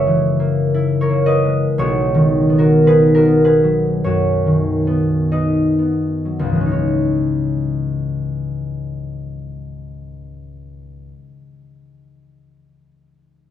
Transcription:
0, 0, Header, 1, 2, 480
1, 0, Start_track
1, 0, Tempo, 1032702
1, 825, Time_signature, 4, 2, 24, 8
1, 825, Tempo, 1079137
1, 1305, Tempo, 1176471
1, 1785, Tempo, 1273885
1, 2265, Tempo, 1392111
1, 2745, Tempo, 1354402
1, 5159, End_track
2, 0, Start_track
2, 0, Title_t, "Harp"
2, 0, Program_c, 0, 46
2, 0, Note_on_c, 0, 30, 83
2, 0, Note_on_c, 0, 42, 90
2, 0, Note_on_c, 0, 49, 73
2, 0, Note_on_c, 0, 54, 65
2, 0, Note_on_c, 0, 56, 71
2, 0, Note_on_c, 0, 58, 77
2, 0, Note_on_c, 0, 64, 82
2, 0, Note_on_c, 0, 70, 92
2, 0, Note_on_c, 0, 71, 84
2, 0, Note_on_c, 0, 73, 103
2, 0, Note_on_c, 0, 76, 127
2, 0, Note_on_c, 0, 78, 111
2, 33, Note_on_c, 0, 52, 71
2, 51, Note_off_c, 0, 54, 0
2, 178, Note_off_c, 0, 58, 0
2, 184, Note_on_c, 0, 58, 74
2, 340, Note_off_c, 0, 64, 0
2, 345, Note_on_c, 0, 64, 86
2, 463, Note_off_c, 0, 73, 0
2, 469, Note_off_c, 0, 70, 0
2, 469, Note_on_c, 0, 73, 105
2, 475, Note_on_c, 0, 70, 79
2, 503, Note_off_c, 0, 58, 0
2, 509, Note_on_c, 0, 58, 77
2, 586, Note_on_c, 0, 75, 112
2, 587, Note_off_c, 0, 71, 0
2, 592, Note_on_c, 0, 71, 92
2, 665, Note_off_c, 0, 56, 0
2, 670, Note_on_c, 0, 56, 66
2, 671, Note_off_c, 0, 73, 0
2, 752, Note_off_c, 0, 30, 0
2, 755, Note_off_c, 0, 42, 0
2, 827, Note_on_c, 0, 35, 93
2, 832, Note_on_c, 0, 73, 127
2, 837, Note_on_c, 0, 66, 88
2, 846, Note_off_c, 0, 64, 0
2, 847, Note_off_c, 0, 56, 0
2, 847, Note_off_c, 0, 58, 0
2, 848, Note_off_c, 0, 52, 0
2, 848, Note_off_c, 0, 76, 0
2, 849, Note_off_c, 0, 49, 0
2, 851, Note_off_c, 0, 70, 0
2, 990, Note_on_c, 0, 51, 82
2, 992, Note_off_c, 0, 75, 0
2, 1145, Note_on_c, 0, 59, 67
2, 1183, Note_off_c, 0, 66, 0
2, 1185, Note_on_c, 0, 70, 99
2, 1188, Note_on_c, 0, 66, 82
2, 1306, Note_off_c, 0, 71, 0
2, 1309, Note_on_c, 0, 63, 73
2, 1312, Note_on_c, 0, 71, 114
2, 1315, Note_on_c, 0, 68, 90
2, 1387, Note_off_c, 0, 70, 0
2, 1422, Note_off_c, 0, 78, 0
2, 1424, Note_on_c, 0, 70, 98
2, 1426, Note_off_c, 0, 66, 0
2, 1431, Note_on_c, 0, 66, 72
2, 1463, Note_off_c, 0, 59, 0
2, 1467, Note_on_c, 0, 59, 73
2, 1506, Note_off_c, 0, 71, 0
2, 1544, Note_off_c, 0, 68, 0
2, 1546, Note_on_c, 0, 71, 106
2, 1549, Note_on_c, 0, 68, 70
2, 1624, Note_on_c, 0, 54, 70
2, 1626, Note_off_c, 0, 70, 0
2, 1784, Note_off_c, 0, 73, 0
2, 1790, Note_on_c, 0, 42, 66
2, 1790, Note_on_c, 0, 73, 99
2, 1792, Note_off_c, 0, 66, 0
2, 1796, Note_on_c, 0, 66, 78
2, 1943, Note_off_c, 0, 51, 0
2, 1948, Note_on_c, 0, 51, 61
2, 2096, Note_off_c, 0, 59, 0
2, 2101, Note_on_c, 0, 59, 67
2, 2265, Note_off_c, 0, 63, 0
2, 2268, Note_on_c, 0, 63, 64
2, 2269, Note_off_c, 0, 71, 0
2, 2269, Note_on_c, 0, 75, 98
2, 2273, Note_on_c, 0, 71, 69
2, 2395, Note_off_c, 0, 35, 0
2, 2427, Note_off_c, 0, 59, 0
2, 2431, Note_on_c, 0, 59, 57
2, 2587, Note_off_c, 0, 54, 0
2, 2592, Note_on_c, 0, 54, 49
2, 2640, Note_on_c, 0, 37, 76
2, 2658, Note_on_c, 0, 44, 63
2, 2675, Note_on_c, 0, 52, 59
2, 2694, Note_on_c, 0, 56, 62
2, 2714, Note_on_c, 0, 61, 70
2, 2727, Note_off_c, 0, 63, 0
2, 2731, Note_on_c, 0, 63, 62
2, 2748, Note_off_c, 0, 73, 0
2, 2752, Note_on_c, 0, 73, 72
2, 2767, Note_off_c, 0, 42, 0
2, 2767, Note_off_c, 0, 54, 0
2, 2768, Note_off_c, 0, 51, 0
2, 2769, Note_off_c, 0, 59, 0
2, 2769, Note_off_c, 0, 71, 0
2, 2770, Note_off_c, 0, 66, 0
2, 2978, Note_off_c, 0, 68, 0
2, 3638, Note_off_c, 0, 75, 0
2, 4304, Note_off_c, 0, 37, 0
2, 4322, Note_off_c, 0, 44, 0
2, 4339, Note_off_c, 0, 52, 0
2, 4359, Note_off_c, 0, 56, 0
2, 4380, Note_off_c, 0, 61, 0
2, 4397, Note_off_c, 0, 63, 0
2, 4419, Note_off_c, 0, 73, 0
2, 5159, End_track
0, 0, End_of_file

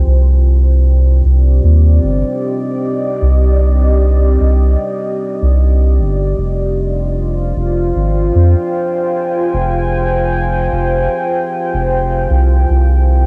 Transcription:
0, 0, Header, 1, 3, 480
1, 0, Start_track
1, 0, Tempo, 789474
1, 38, Time_signature, 4, 2, 24, 8
1, 8065, End_track
2, 0, Start_track
2, 0, Title_t, "Ambient pad"
2, 0, Program_c, 0, 92
2, 0, Note_on_c, 0, 65, 76
2, 0, Note_on_c, 0, 72, 77
2, 0, Note_on_c, 0, 79, 89
2, 38, Note_on_c, 0, 60, 78
2, 180, Note_on_c, 0, 67, 86
2, 361, Note_on_c, 0, 74, 69
2, 855, Note_on_c, 0, 75, 78
2, 893, Note_off_c, 0, 79, 0
2, 1120, Note_off_c, 0, 65, 0
2, 1589, Note_off_c, 0, 72, 0
2, 3877, Note_off_c, 0, 67, 0
2, 3877, Note_on_c, 0, 65, 83
2, 4228, Note_on_c, 0, 72, 74
2, 4590, Note_off_c, 0, 75, 0
2, 4709, Note_off_c, 0, 60, 0
2, 4713, Note_on_c, 0, 79, 78
2, 5097, Note_on_c, 0, 80, 73
2, 5426, Note_off_c, 0, 74, 0
2, 7717, Note_on_c, 0, 60, 81
2, 7718, Note_off_c, 0, 80, 0
2, 7848, Note_on_c, 0, 67, 86
2, 8065, Note_off_c, 0, 60, 0
2, 8065, Note_off_c, 0, 65, 0
2, 8065, Note_off_c, 0, 67, 0
2, 8065, Note_off_c, 0, 72, 0
2, 8065, Note_off_c, 0, 79, 0
2, 8065, End_track
3, 0, Start_track
3, 0, Title_t, "Sub bass"
3, 0, Program_c, 1, 38
3, 38, Note_on_c, 1, 36, 98
3, 738, Note_off_c, 1, 36, 0
3, 758, Note_on_c, 1, 36, 94
3, 973, Note_off_c, 1, 36, 0
3, 995, Note_on_c, 1, 39, 90
3, 1212, Note_off_c, 1, 39, 0
3, 1236, Note_on_c, 1, 31, 95
3, 1358, Note_off_c, 1, 31, 0
3, 1957, Note_on_c, 1, 36, 96
3, 2658, Note_off_c, 1, 36, 0
3, 2678, Note_on_c, 1, 36, 99
3, 2893, Note_off_c, 1, 36, 0
3, 3296, Note_on_c, 1, 36, 85
3, 3639, Note_on_c, 1, 31, 91
3, 3648, Note_off_c, 1, 36, 0
3, 3854, Note_off_c, 1, 31, 0
3, 3877, Note_on_c, 1, 29, 96
3, 4578, Note_off_c, 1, 29, 0
3, 4598, Note_on_c, 1, 29, 103
3, 4813, Note_off_c, 1, 29, 0
3, 4835, Note_on_c, 1, 32, 82
3, 5052, Note_off_c, 1, 32, 0
3, 5077, Note_on_c, 1, 41, 98
3, 5198, Note_off_c, 1, 41, 0
3, 5797, Note_on_c, 1, 29, 100
3, 6498, Note_off_c, 1, 29, 0
3, 6517, Note_on_c, 1, 29, 100
3, 6733, Note_off_c, 1, 29, 0
3, 7135, Note_on_c, 1, 29, 88
3, 7458, Note_off_c, 1, 29, 0
3, 7477, Note_on_c, 1, 36, 95
3, 7693, Note_off_c, 1, 36, 0
3, 7719, Note_on_c, 1, 36, 100
3, 8065, Note_off_c, 1, 36, 0
3, 8065, End_track
0, 0, End_of_file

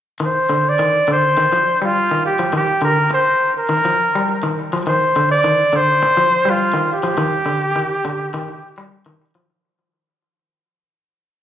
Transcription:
0, 0, Header, 1, 4, 480
1, 0, Start_track
1, 0, Key_signature, -3, "minor"
1, 0, Tempo, 581395
1, 183, Time_signature, 4, 2, 24, 8
1, 9430, End_track
2, 0, Start_track
2, 0, Title_t, "Trumpet"
2, 0, Program_c, 0, 56
2, 214, Note_on_c, 0, 72, 82
2, 571, Note_on_c, 0, 74, 98
2, 583, Note_off_c, 0, 72, 0
2, 915, Note_off_c, 0, 74, 0
2, 929, Note_on_c, 0, 72, 98
2, 1483, Note_off_c, 0, 72, 0
2, 1527, Note_on_c, 0, 65, 89
2, 1848, Note_off_c, 0, 65, 0
2, 1867, Note_on_c, 0, 67, 75
2, 2086, Note_off_c, 0, 67, 0
2, 2118, Note_on_c, 0, 67, 75
2, 2332, Note_off_c, 0, 67, 0
2, 2345, Note_on_c, 0, 70, 78
2, 2565, Note_off_c, 0, 70, 0
2, 2592, Note_on_c, 0, 72, 81
2, 2921, Note_off_c, 0, 72, 0
2, 2963, Note_on_c, 0, 70, 85
2, 3755, Note_off_c, 0, 70, 0
2, 4033, Note_on_c, 0, 72, 83
2, 4361, Note_off_c, 0, 72, 0
2, 4388, Note_on_c, 0, 74, 93
2, 4757, Note_on_c, 0, 72, 101
2, 4770, Note_off_c, 0, 74, 0
2, 5367, Note_on_c, 0, 65, 82
2, 5379, Note_off_c, 0, 72, 0
2, 5710, Note_off_c, 0, 65, 0
2, 5723, Note_on_c, 0, 67, 82
2, 7358, Note_off_c, 0, 67, 0
2, 9430, End_track
3, 0, Start_track
3, 0, Title_t, "Clean electric guitar"
3, 0, Program_c, 1, 27
3, 166, Note_on_c, 1, 51, 65
3, 387, Note_off_c, 1, 51, 0
3, 408, Note_on_c, 1, 50, 69
3, 628, Note_off_c, 1, 50, 0
3, 654, Note_on_c, 1, 51, 65
3, 870, Note_off_c, 1, 51, 0
3, 891, Note_on_c, 1, 50, 73
3, 1108, Note_off_c, 1, 50, 0
3, 1135, Note_on_c, 1, 51, 78
3, 1245, Note_off_c, 1, 51, 0
3, 1259, Note_on_c, 1, 53, 59
3, 1474, Note_off_c, 1, 53, 0
3, 1500, Note_on_c, 1, 55, 57
3, 1714, Note_off_c, 1, 55, 0
3, 1745, Note_on_c, 1, 51, 61
3, 1956, Note_off_c, 1, 51, 0
3, 1975, Note_on_c, 1, 53, 65
3, 2083, Note_off_c, 1, 53, 0
3, 2088, Note_on_c, 1, 51, 74
3, 2306, Note_off_c, 1, 51, 0
3, 2325, Note_on_c, 1, 50, 67
3, 2544, Note_off_c, 1, 50, 0
3, 3047, Note_on_c, 1, 51, 69
3, 3159, Note_off_c, 1, 51, 0
3, 3178, Note_on_c, 1, 53, 57
3, 3391, Note_off_c, 1, 53, 0
3, 3429, Note_on_c, 1, 55, 64
3, 3637, Note_off_c, 1, 55, 0
3, 3659, Note_on_c, 1, 51, 61
3, 3871, Note_off_c, 1, 51, 0
3, 3906, Note_on_c, 1, 53, 73
3, 4007, Note_off_c, 1, 53, 0
3, 4020, Note_on_c, 1, 51, 79
3, 4231, Note_off_c, 1, 51, 0
3, 4260, Note_on_c, 1, 50, 67
3, 4471, Note_off_c, 1, 50, 0
3, 4493, Note_on_c, 1, 51, 72
3, 4707, Note_off_c, 1, 51, 0
3, 4729, Note_on_c, 1, 50, 71
3, 4945, Note_off_c, 1, 50, 0
3, 5096, Note_on_c, 1, 53, 62
3, 5309, Note_off_c, 1, 53, 0
3, 5327, Note_on_c, 1, 55, 62
3, 5544, Note_off_c, 1, 55, 0
3, 5562, Note_on_c, 1, 51, 72
3, 5782, Note_off_c, 1, 51, 0
3, 5807, Note_on_c, 1, 53, 62
3, 5917, Note_off_c, 1, 53, 0
3, 5925, Note_on_c, 1, 51, 89
3, 6143, Note_off_c, 1, 51, 0
3, 6157, Note_on_c, 1, 50, 65
3, 6379, Note_off_c, 1, 50, 0
3, 6405, Note_on_c, 1, 51, 69
3, 6623, Note_off_c, 1, 51, 0
3, 6644, Note_on_c, 1, 50, 71
3, 6863, Note_off_c, 1, 50, 0
3, 6885, Note_on_c, 1, 51, 85
3, 6998, Note_off_c, 1, 51, 0
3, 7247, Note_on_c, 1, 55, 68
3, 7466, Note_off_c, 1, 55, 0
3, 7480, Note_on_c, 1, 51, 72
3, 7702, Note_off_c, 1, 51, 0
3, 7720, Note_on_c, 1, 53, 74
3, 7834, Note_off_c, 1, 53, 0
3, 9430, End_track
4, 0, Start_track
4, 0, Title_t, "Muted clean electric guitar strokes"
4, 2564, Note_on_c, 9, 29, 64
4, 2647, Note_off_c, 9, 29, 0
4, 4975, Note_on_c, 9, 29, 79
4, 5058, Note_off_c, 9, 29, 0
4, 9430, End_track
0, 0, End_of_file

